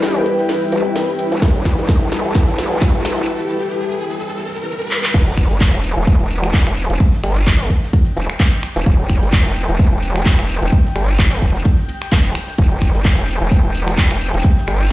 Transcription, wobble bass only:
0, 0, Header, 1, 2, 480
1, 0, Start_track
1, 0, Key_signature, 1, "minor"
1, 0, Tempo, 465116
1, 1468, Time_signature, 4, 2, 24, 8
1, 15400, End_track
2, 0, Start_track
2, 0, Title_t, "Wobble bass"
2, 0, Program_c, 0, 39
2, 0, Note_on_c, 0, 31, 94
2, 250, Note_off_c, 0, 31, 0
2, 747, Note_on_c, 0, 28, 93
2, 860, Note_off_c, 0, 28, 0
2, 1361, Note_on_c, 0, 28, 98
2, 1450, Note_off_c, 0, 28, 0
2, 1467, Note_on_c, 0, 28, 96
2, 1580, Note_off_c, 0, 28, 0
2, 1601, Note_on_c, 0, 30, 93
2, 1820, Note_off_c, 0, 30, 0
2, 1842, Note_on_c, 0, 31, 93
2, 2060, Note_off_c, 0, 31, 0
2, 2081, Note_on_c, 0, 28, 94
2, 2300, Note_off_c, 0, 28, 0
2, 2322, Note_on_c, 0, 28, 97
2, 2540, Note_off_c, 0, 28, 0
2, 2562, Note_on_c, 0, 28, 92
2, 3020, Note_off_c, 0, 28, 0
2, 3042, Note_on_c, 0, 28, 99
2, 3260, Note_off_c, 0, 28, 0
2, 3281, Note_on_c, 0, 28, 94
2, 3370, Note_off_c, 0, 28, 0
2, 5307, Note_on_c, 0, 28, 92
2, 5420, Note_off_c, 0, 28, 0
2, 5441, Note_on_c, 0, 30, 97
2, 5660, Note_off_c, 0, 30, 0
2, 5682, Note_on_c, 0, 31, 97
2, 5900, Note_off_c, 0, 31, 0
2, 5922, Note_on_c, 0, 28, 95
2, 6140, Note_off_c, 0, 28, 0
2, 6162, Note_on_c, 0, 28, 99
2, 6380, Note_off_c, 0, 28, 0
2, 6401, Note_on_c, 0, 28, 95
2, 6860, Note_off_c, 0, 28, 0
2, 6882, Note_on_c, 0, 28, 104
2, 7100, Note_off_c, 0, 28, 0
2, 7121, Note_on_c, 0, 28, 91
2, 7210, Note_off_c, 0, 28, 0
2, 7467, Note_on_c, 0, 31, 95
2, 7930, Note_off_c, 0, 31, 0
2, 8427, Note_on_c, 0, 28, 96
2, 8540, Note_off_c, 0, 28, 0
2, 9041, Note_on_c, 0, 28, 96
2, 9130, Note_off_c, 0, 28, 0
2, 9147, Note_on_c, 0, 28, 96
2, 9260, Note_off_c, 0, 28, 0
2, 9281, Note_on_c, 0, 30, 98
2, 9500, Note_off_c, 0, 30, 0
2, 9521, Note_on_c, 0, 31, 98
2, 9740, Note_off_c, 0, 31, 0
2, 9761, Note_on_c, 0, 28, 94
2, 9980, Note_off_c, 0, 28, 0
2, 10001, Note_on_c, 0, 28, 104
2, 10220, Note_off_c, 0, 28, 0
2, 10241, Note_on_c, 0, 28, 93
2, 10700, Note_off_c, 0, 28, 0
2, 10721, Note_on_c, 0, 28, 102
2, 10940, Note_off_c, 0, 28, 0
2, 10961, Note_on_c, 0, 28, 96
2, 11050, Note_off_c, 0, 28, 0
2, 11307, Note_on_c, 0, 31, 102
2, 11770, Note_off_c, 0, 31, 0
2, 11787, Note_on_c, 0, 28, 102
2, 12010, Note_off_c, 0, 28, 0
2, 12507, Note_on_c, 0, 28, 101
2, 12730, Note_off_c, 0, 28, 0
2, 12987, Note_on_c, 0, 28, 98
2, 13100, Note_off_c, 0, 28, 0
2, 13122, Note_on_c, 0, 30, 95
2, 13340, Note_off_c, 0, 30, 0
2, 13362, Note_on_c, 0, 31, 90
2, 13580, Note_off_c, 0, 31, 0
2, 13602, Note_on_c, 0, 28, 97
2, 13820, Note_off_c, 0, 28, 0
2, 13842, Note_on_c, 0, 28, 100
2, 14060, Note_off_c, 0, 28, 0
2, 14082, Note_on_c, 0, 28, 93
2, 14540, Note_off_c, 0, 28, 0
2, 14562, Note_on_c, 0, 28, 105
2, 14780, Note_off_c, 0, 28, 0
2, 14802, Note_on_c, 0, 28, 96
2, 14890, Note_off_c, 0, 28, 0
2, 15147, Note_on_c, 0, 31, 100
2, 15400, Note_off_c, 0, 31, 0
2, 15400, End_track
0, 0, End_of_file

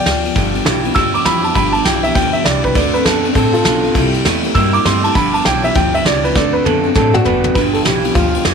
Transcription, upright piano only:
0, 0, Header, 1, 2, 480
1, 0, Start_track
1, 0, Tempo, 299850
1, 571, Time_signature, 4, 2, 24, 8
1, 13672, End_track
2, 0, Start_track
2, 0, Title_t, "Upright piano"
2, 0, Program_c, 0, 0
2, 0, Note_on_c, 0, 74, 92
2, 0, Note_on_c, 0, 79, 95
2, 1279, Note_off_c, 0, 74, 0
2, 1302, Note_off_c, 0, 79, 0
2, 1516, Note_on_c, 0, 88, 101
2, 1813, Note_off_c, 0, 88, 0
2, 1827, Note_on_c, 0, 86, 93
2, 2001, Note_on_c, 0, 83, 98
2, 2004, Note_off_c, 0, 86, 0
2, 2295, Note_off_c, 0, 83, 0
2, 2305, Note_on_c, 0, 81, 81
2, 2474, Note_on_c, 0, 83, 98
2, 2483, Note_off_c, 0, 81, 0
2, 2759, Note_on_c, 0, 81, 102
2, 2771, Note_off_c, 0, 83, 0
2, 2949, Note_off_c, 0, 81, 0
2, 2951, Note_on_c, 0, 79, 87
2, 3250, Note_off_c, 0, 79, 0
2, 3254, Note_on_c, 0, 76, 100
2, 3437, Note_off_c, 0, 76, 0
2, 3438, Note_on_c, 0, 79, 95
2, 3728, Note_on_c, 0, 76, 93
2, 3734, Note_off_c, 0, 79, 0
2, 3908, Note_on_c, 0, 74, 98
2, 3914, Note_off_c, 0, 76, 0
2, 4209, Note_off_c, 0, 74, 0
2, 4232, Note_on_c, 0, 71, 105
2, 4406, Note_on_c, 0, 74, 90
2, 4407, Note_off_c, 0, 71, 0
2, 4698, Note_off_c, 0, 74, 0
2, 4699, Note_on_c, 0, 71, 108
2, 4877, Note_on_c, 0, 69, 94
2, 4880, Note_off_c, 0, 71, 0
2, 5173, Note_off_c, 0, 69, 0
2, 5363, Note_on_c, 0, 69, 88
2, 5638, Note_off_c, 0, 69, 0
2, 5654, Note_on_c, 0, 65, 93
2, 5663, Note_on_c, 0, 69, 102
2, 6499, Note_off_c, 0, 65, 0
2, 6539, Note_off_c, 0, 69, 0
2, 7279, Note_on_c, 0, 88, 97
2, 7575, Note_off_c, 0, 88, 0
2, 7575, Note_on_c, 0, 86, 109
2, 7758, Note_off_c, 0, 86, 0
2, 7770, Note_on_c, 0, 84, 91
2, 8060, Note_off_c, 0, 84, 0
2, 8064, Note_on_c, 0, 81, 96
2, 8239, Note_on_c, 0, 83, 100
2, 8243, Note_off_c, 0, 81, 0
2, 8535, Note_off_c, 0, 83, 0
2, 8541, Note_on_c, 0, 81, 98
2, 8721, Note_off_c, 0, 81, 0
2, 8735, Note_on_c, 0, 79, 102
2, 9023, Note_off_c, 0, 79, 0
2, 9032, Note_on_c, 0, 76, 101
2, 9207, Note_off_c, 0, 76, 0
2, 9212, Note_on_c, 0, 79, 94
2, 9502, Note_off_c, 0, 79, 0
2, 9516, Note_on_c, 0, 76, 102
2, 9689, Note_off_c, 0, 76, 0
2, 9701, Note_on_c, 0, 74, 108
2, 9986, Note_off_c, 0, 74, 0
2, 9994, Note_on_c, 0, 71, 95
2, 10168, Note_off_c, 0, 71, 0
2, 10169, Note_on_c, 0, 74, 106
2, 10454, Note_on_c, 0, 71, 104
2, 10460, Note_off_c, 0, 74, 0
2, 10638, Note_off_c, 0, 71, 0
2, 10641, Note_on_c, 0, 69, 88
2, 10936, Note_off_c, 0, 69, 0
2, 11133, Note_on_c, 0, 69, 104
2, 11420, Note_on_c, 0, 62, 89
2, 11422, Note_off_c, 0, 69, 0
2, 11434, Note_on_c, 0, 66, 120
2, 11605, Note_on_c, 0, 71, 107
2, 12040, Note_off_c, 0, 62, 0
2, 12052, Note_off_c, 0, 71, 0
2, 12074, Note_off_c, 0, 66, 0
2, 12076, Note_on_c, 0, 71, 102
2, 12156, Note_off_c, 0, 71, 0
2, 12380, Note_on_c, 0, 69, 99
2, 12460, Note_off_c, 0, 69, 0
2, 12572, Note_on_c, 0, 67, 93
2, 13019, Note_off_c, 0, 67, 0
2, 13036, Note_on_c, 0, 65, 95
2, 13490, Note_off_c, 0, 65, 0
2, 13672, End_track
0, 0, End_of_file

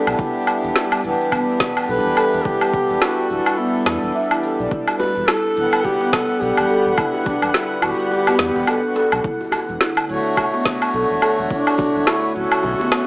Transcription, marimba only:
0, 0, Header, 1, 2, 480
1, 0, Start_track
1, 0, Tempo, 566038
1, 157, Time_signature, 4, 2, 24, 8
1, 11082, End_track
2, 0, Start_track
2, 0, Title_t, "Marimba"
2, 0, Program_c, 0, 12
2, 0, Note_on_c, 0, 69, 100
2, 148, Note_off_c, 0, 69, 0
2, 160, Note_on_c, 0, 64, 83
2, 628, Note_off_c, 0, 64, 0
2, 638, Note_on_c, 0, 64, 84
2, 868, Note_off_c, 0, 64, 0
2, 880, Note_on_c, 0, 64, 78
2, 958, Note_off_c, 0, 64, 0
2, 1119, Note_on_c, 0, 59, 92
2, 1588, Note_off_c, 0, 59, 0
2, 1599, Note_on_c, 0, 69, 86
2, 1678, Note_off_c, 0, 69, 0
2, 1841, Note_on_c, 0, 69, 105
2, 2069, Note_off_c, 0, 69, 0
2, 2078, Note_on_c, 0, 64, 81
2, 2548, Note_off_c, 0, 64, 0
2, 2559, Note_on_c, 0, 64, 83
2, 2788, Note_off_c, 0, 64, 0
2, 2797, Note_on_c, 0, 64, 70
2, 2876, Note_off_c, 0, 64, 0
2, 3038, Note_on_c, 0, 59, 85
2, 3163, Note_off_c, 0, 59, 0
2, 3519, Note_on_c, 0, 76, 103
2, 3597, Note_off_c, 0, 76, 0
2, 3655, Note_on_c, 0, 64, 99
2, 3751, Note_off_c, 0, 64, 0
2, 3757, Note_on_c, 0, 69, 73
2, 3890, Note_off_c, 0, 69, 0
2, 3898, Note_on_c, 0, 74, 74
2, 3988, Note_off_c, 0, 74, 0
2, 3997, Note_on_c, 0, 64, 81
2, 4467, Note_off_c, 0, 64, 0
2, 4478, Note_on_c, 0, 64, 82
2, 4708, Note_off_c, 0, 64, 0
2, 4719, Note_on_c, 0, 64, 76
2, 4798, Note_off_c, 0, 64, 0
2, 5097, Note_on_c, 0, 59, 78
2, 5427, Note_off_c, 0, 59, 0
2, 5438, Note_on_c, 0, 69, 90
2, 5517, Note_off_c, 0, 69, 0
2, 5679, Note_on_c, 0, 69, 101
2, 5908, Note_off_c, 0, 69, 0
2, 5919, Note_on_c, 0, 64, 81
2, 6388, Note_off_c, 0, 64, 0
2, 6399, Note_on_c, 0, 64, 83
2, 6628, Note_off_c, 0, 64, 0
2, 6638, Note_on_c, 0, 64, 70
2, 6717, Note_off_c, 0, 64, 0
2, 7018, Note_on_c, 0, 59, 78
2, 7348, Note_off_c, 0, 59, 0
2, 7356, Note_on_c, 0, 69, 84
2, 7436, Note_off_c, 0, 69, 0
2, 7596, Note_on_c, 0, 69, 107
2, 7827, Note_off_c, 0, 69, 0
2, 7836, Note_on_c, 0, 64, 83
2, 8306, Note_off_c, 0, 64, 0
2, 8316, Note_on_c, 0, 64, 88
2, 8546, Note_off_c, 0, 64, 0
2, 8556, Note_on_c, 0, 64, 72
2, 8636, Note_off_c, 0, 64, 0
2, 8934, Note_on_c, 0, 59, 75
2, 9266, Note_off_c, 0, 59, 0
2, 9277, Note_on_c, 0, 69, 91
2, 9356, Note_off_c, 0, 69, 0
2, 9516, Note_on_c, 0, 69, 104
2, 9747, Note_off_c, 0, 69, 0
2, 9756, Note_on_c, 0, 64, 84
2, 10227, Note_off_c, 0, 64, 0
2, 10238, Note_on_c, 0, 64, 86
2, 10467, Note_off_c, 0, 64, 0
2, 10477, Note_on_c, 0, 64, 75
2, 10556, Note_off_c, 0, 64, 0
2, 10858, Note_on_c, 0, 59, 82
2, 10948, Note_off_c, 0, 59, 0
2, 11082, End_track
0, 0, End_of_file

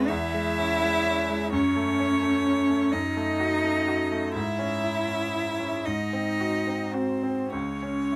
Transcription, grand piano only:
0, 0, Header, 1, 2, 480
1, 0, Start_track
1, 0, Key_signature, 4, "minor"
1, 0, Tempo, 947867
1, 773, Time_signature, 6, 3, 24, 8
1, 2204, Tempo, 991736
1, 2684, Tempo, 1056338
1, 3164, Tempo, 1153846
1, 3895, End_track
2, 0, Start_track
2, 0, Title_t, "Grand piano"
2, 0, Program_c, 0, 0
2, 0, Control_c, 0, 64, 127
2, 0, Note_on_c, 0, 40, 53
2, 0, Note_on_c, 0, 56, 39
2, 0, Note_on_c, 0, 64, 41
2, 49, Note_off_c, 0, 40, 0
2, 49, Note_on_c, 0, 40, 54
2, 56, Control_c, 0, 64, 0
2, 57, Note_off_c, 0, 56, 0
2, 61, Note_off_c, 0, 64, 0
2, 128, Control_c, 0, 64, 127
2, 173, Note_on_c, 0, 56, 39
2, 297, Note_on_c, 0, 61, 40
2, 367, Note_off_c, 0, 56, 0
2, 414, Note_on_c, 0, 56, 40
2, 488, Note_off_c, 0, 61, 0
2, 536, Note_on_c, 0, 61, 42
2, 606, Note_off_c, 0, 56, 0
2, 655, Note_on_c, 0, 56, 39
2, 726, Note_off_c, 0, 61, 0
2, 754, Note_off_c, 0, 40, 0
2, 773, Note_off_c, 0, 56, 0
2, 773, Note_on_c, 0, 42, 55
2, 781, Control_c, 0, 64, 0
2, 851, Control_c, 0, 64, 127
2, 892, Note_on_c, 0, 57, 41
2, 1012, Note_on_c, 0, 61, 42
2, 1082, Note_off_c, 0, 57, 0
2, 1128, Note_on_c, 0, 57, 38
2, 1200, Note_off_c, 0, 61, 0
2, 1247, Note_on_c, 0, 61, 39
2, 1317, Note_off_c, 0, 57, 0
2, 1367, Note_on_c, 0, 57, 38
2, 1436, Note_off_c, 0, 61, 0
2, 1463, Note_off_c, 0, 42, 0
2, 1485, Note_off_c, 0, 57, 0
2, 1485, Note_on_c, 0, 42, 52
2, 1493, Control_c, 0, 64, 0
2, 1565, Control_c, 0, 64, 127
2, 1604, Note_on_c, 0, 57, 37
2, 1721, Note_on_c, 0, 66, 37
2, 1797, Note_off_c, 0, 57, 0
2, 1844, Note_on_c, 0, 57, 39
2, 1915, Note_off_c, 0, 66, 0
2, 1965, Note_on_c, 0, 66, 37
2, 2035, Note_off_c, 0, 57, 0
2, 2086, Note_on_c, 0, 57, 39
2, 2156, Note_off_c, 0, 66, 0
2, 2184, Note_off_c, 0, 42, 0
2, 2202, Note_on_c, 0, 44, 47
2, 2205, Note_off_c, 0, 57, 0
2, 2212, Control_c, 0, 64, 0
2, 2288, Control_c, 0, 64, 127
2, 2318, Note_on_c, 0, 61, 41
2, 2438, Note_on_c, 0, 64, 40
2, 2510, Note_off_c, 0, 61, 0
2, 2559, Note_on_c, 0, 61, 36
2, 2634, Note_off_c, 0, 64, 0
2, 2685, Note_on_c, 0, 64, 36
2, 2754, Note_off_c, 0, 61, 0
2, 2800, Note_on_c, 0, 61, 34
2, 2875, Note_off_c, 0, 64, 0
2, 2903, Note_off_c, 0, 44, 0
2, 2921, Note_off_c, 0, 61, 0
2, 2924, Note_on_c, 0, 44, 44
2, 2931, Control_c, 0, 64, 0
2, 3009, Control_c, 0, 64, 127
2, 3042, Note_on_c, 0, 60, 34
2, 3166, Note_on_c, 0, 66, 32
2, 3231, Note_off_c, 0, 60, 0
2, 3277, Note_on_c, 0, 60, 33
2, 3346, Note_off_c, 0, 66, 0
2, 3389, Note_on_c, 0, 66, 33
2, 3462, Note_off_c, 0, 60, 0
2, 3511, Note_on_c, 0, 60, 31
2, 3582, Note_off_c, 0, 66, 0
2, 3617, Note_off_c, 0, 44, 0
2, 3632, Note_on_c, 0, 37, 42
2, 3634, Note_off_c, 0, 60, 0
2, 3643, Control_c, 0, 64, 0
2, 3721, Control_c, 0, 64, 127
2, 3757, Note_on_c, 0, 61, 33
2, 3880, Note_on_c, 0, 64, 34
2, 3895, Note_off_c, 0, 37, 0
2, 3895, Note_off_c, 0, 61, 0
2, 3895, Note_off_c, 0, 64, 0
2, 3895, End_track
0, 0, End_of_file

